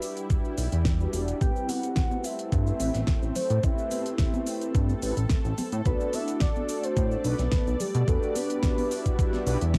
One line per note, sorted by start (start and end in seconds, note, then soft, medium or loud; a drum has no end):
0.00 3.59 G3 medium
0.00 0.54 D4 medium
0.00 1.39 E4 medium
0.00 0.55 F#4 medium
0.00 0.55 G4 medium
0.00 0.55 B4 medium
0.00 1.37 D5 medium
0.00 open hi-hat loud
0.00 cabasa medium
0.17 closed hi-hat medium
0.17 cabasa soft
0.30 kick loud
0.30 closed hi-hat soft
0.30 cabasa soft
0.45 cabasa soft
0.57 0.68 B1 medium
0.57 open hi-hat loud
0.57 cabasa medium
0.72 1.07 E2 loud
0.72 closed hi-hat medium
0.72 cabasa soft
0.85 kick loud
0.85 snare loud
0.85 closed hi-hat soft
0.85 cabasa soft
1.00 1.10 D4 medium
1.00 1.10 F#4 medium
1.00 1.10 G4 medium
1.00 1.11 B4 loud
1.00 cabasa soft
1.13 1.33 E1 loud
1.13 1.38 D4 medium
1.13 1.38 F#4 medium
1.13 1.38 G4 medium
1.13 1.38 D5 medium
1.13 open hi-hat loud
1.13 cabasa medium
1.28 closed hi-hat medium
1.28 cabasa soft
1.40 1.51 A1 medium
1.40 5.82 A3 medium
1.40 2.76 C4 medium
1.40 5.82 C4 medium
1.40 2.77 E4 medium
1.40 2.77 G4 medium
1.40 2.77 B4 medium
1.40 1.71 G5 loud
1.40 kick loud
1.40 closed hi-hat soft
1.40 cabasa soft
1.40 maracas soft
1.56 cabasa soft
1.69 2.26 F#5 loud
1.69 open hi-hat loud
1.69 high conga medium
1.69 cabasa medium
1.69 maracas medium
1.83 closed hi-hat medium
1.83 cabasa soft
1.83 maracas soft
1.96 kick loud
1.96 snare loud
1.96 closed hi-hat soft
1.96 cabasa soft
1.96 maracas soft
2.11 high conga medium
2.11 cabasa soft
2.24 3.35 E5 loud
2.24 open hi-hat loud
2.24 cabasa medium
2.24 maracas medium
2.39 closed hi-hat medium
2.39 cabasa soft
2.39 maracas soft
2.52 2.72 G2 loud
2.52 kick loud
2.52 closed hi-hat soft
2.52 cabasa soft
2.52 maracas medium
2.67 cabasa soft
2.67 maracas soft
2.80 2.90 A1 medium
2.80 2.90 C4 loud
2.80 2.90 E4 medium
2.80 2.91 G4 medium
2.80 2.91 B4 loud
2.80 open hi-hat loud
2.80 cabasa medium
2.80 maracas medium
2.94 3.04 A1 medium
2.94 snare soft
2.94 closed hi-hat medium
2.94 high conga medium
2.94 cabasa soft
2.94 maracas soft
3.07 kick loud
3.07 snare loud
3.07 closed hi-hat soft
3.07 cabasa soft
3.07 maracas medium
3.22 3.32 A1 medium
3.22 cabasa soft
3.22 maracas soft
3.35 3.65 C5 medium
3.35 open hi-hat loud
3.35 low conga medium
3.35 cabasa medium
3.35 maracas medium
3.50 3.59 A2 medium
3.50 closed hi-hat medium
3.50 cabasa soft
3.50 maracas soft
3.62 3.74 A1 loud
3.62 4.99 C4 medium
3.62 4.99 E4 medium
3.62 4.99 G4 medium
3.62 8.04 A4 medium
3.62 5.00 B4 medium
3.62 4.75 E5 loud
3.62 kick loud
3.62 closed hi-hat soft
3.62 cabasa soft
3.62 maracas soft
3.78 cabasa soft
3.91 open hi-hat loud
3.91 high conga medium
3.91 cabasa medium
3.91 maracas medium
4.06 closed hi-hat medium
4.06 cabasa soft
4.06 maracas soft
4.18 kick loud
4.18 snare loud
4.18 closed hi-hat soft
4.18 cabasa soft
4.18 maracas medium
4.34 high conga medium
4.34 cabasa soft
4.46 open hi-hat medium
4.46 cabasa medium
4.46 maracas loud
4.61 closed hi-hat medium
4.61 cabasa soft
4.61 maracas soft
4.75 4.94 G2 medium
4.75 kick loud
4.75 closed hi-hat medium
4.75 cabasa soft
4.75 maracas medium
4.89 high conga medium
4.89 cabasa soft
4.89 maracas soft
5.02 5.13 A1 medium
5.02 5.12 C4 loud
5.02 5.13 E4 loud
5.02 5.13 G4 medium
5.02 5.13 B4 loud
5.02 open hi-hat loud
5.02 cabasa medium
5.02 maracas medium
5.17 5.26 A1 medium
5.17 closed hi-hat medium
5.17 cabasa soft
5.17 maracas soft
5.29 kick loud
5.29 snare loud
5.29 closed hi-hat soft
5.29 cabasa soft
5.29 maracas medium
5.45 5.54 A1 loud
5.45 cabasa soft
5.45 maracas soft
5.58 open hi-hat loud
5.58 high conga medium
5.58 low conga medium
5.58 cabasa medium
5.58 maracas loud
5.72 5.82 A2 medium
5.72 closed hi-hat medium
5.72 cabasa soft
5.72 maracas soft
5.85 5.96 B1 medium
5.85 8.06 A3 medium
5.85 7.21 D4 medium
5.85 7.21 F#4 medium
5.85 7.22 A4 medium
5.85 6.16 B4 loud
5.85 9.78 D5 medium
5.85 7.22 D5 medium
5.85 kick loud
5.85 closed hi-hat soft
5.85 cabasa soft
5.85 maracas medium
6.00 cabasa soft
6.13 6.41 E5 loud
6.13 open hi-hat loud
6.13 high conga medium
6.13 cabasa medium
6.13 maracas medium
6.28 closed hi-hat medium
6.28 cabasa soft
6.28 maracas soft
6.40 6.86 D5 loud
6.40 kick loud
6.40 snare loud
6.40 closed hi-hat medium
6.40 cabasa soft
6.40 maracas soft
6.56 high conga medium
6.56 cabasa soft
6.69 open hi-hat loud
6.69 cabasa medium
6.69 maracas medium
6.84 7.26 C5 loud
6.84 closed hi-hat medium
6.84 cabasa soft
6.84 maracas soft
6.96 7.16 A2 loud
6.96 kick loud
6.96 closed hi-hat medium
6.96 cabasa soft
6.96 maracas medium
7.12 cabasa soft
7.12 maracas soft
7.24 7.35 B1 medium
7.24 7.35 D4 loud
7.24 7.35 F#4 medium
7.24 7.35 A4 medium
7.24 7.82 B4 loud
7.24 7.35 B4 loud
7.24 open hi-hat loud
7.24 cabasa medium
7.24 maracas medium
7.39 7.48 B1 medium
7.39 snare soft
7.39 closed hi-hat medium
7.39 high conga medium
7.39 cabasa soft
7.39 maracas soft
7.52 kick loud
7.52 snare loud
7.52 closed hi-hat medium
7.52 cabasa soft
7.52 maracas medium
7.67 7.76 B1 medium
7.67 cabasa soft
7.67 maracas soft
7.80 8.10 G4 medium
7.80 open hi-hat medium
7.80 low conga medium
7.80 cabasa medium
7.80 maracas loud
7.94 8.04 B2 loud
7.94 closed hi-hat medium
7.94 cabasa soft
7.94 maracas soft
8.07 8.18 E2 loud
8.07 9.78 G3 medium
8.07 9.43 D4 medium
8.07 9.78 E4 medium
8.07 9.43 F#4 medium
8.07 9.44 G4 medium
8.07 8.37 A4 loud
8.07 9.44 B4 medium
8.07 kick loud
8.07 closed hi-hat medium
8.07 cabasa soft
8.07 maracas soft
8.23 cabasa soft
8.23 maracas soft
8.35 9.19 B4 loud
8.35 open hi-hat loud
8.35 high conga medium
8.35 cabasa medium
8.35 maracas medium
8.50 closed hi-hat medium
8.50 cabasa soft
8.50 maracas soft
8.63 kick loud
8.63 snare loud
8.63 closed hi-hat medium
8.63 cabasa soft
8.63 maracas medium
8.78 open hi-hat medium
8.78 high conga medium
8.78 cabasa soft
8.78 maracas soft
8.91 open hi-hat loud
8.91 cabasa medium
8.91 maracas medium
9.06 kick medium
9.06 closed hi-hat medium
9.06 cabasa soft
9.06 maracas soft
9.19 kick loud
9.19 closed hi-hat medium
9.19 cabasa soft
9.19 maracas medium
9.33 snare soft
9.33 high conga medium
9.33 cabasa soft
9.33 maracas soft
9.46 9.57 B1 medium
9.46 9.57 D4 loud
9.46 9.57 F#4 medium
9.46 9.57 G4 medium
9.46 9.57 B4 loud
9.46 open hi-hat loud
9.46 cabasa medium
9.46 maracas medium
9.61 9.78 E2 loud
9.61 closed hi-hat medium
9.61 cabasa soft
9.61 maracas soft
9.74 kick loud
9.74 snare loud
9.74 closed hi-hat medium
9.74 cabasa soft
9.74 maracas medium